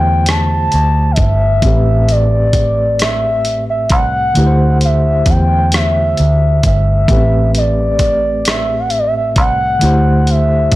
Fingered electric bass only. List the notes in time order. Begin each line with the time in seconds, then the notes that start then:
Already playing: E2
0.74 D2
1.18 G1
1.63 A1
3.91 C2
4.37 D2
5.27 E2
6.20 D2
6.65 G1
7.09 A1
9.37 C2
9.83 D2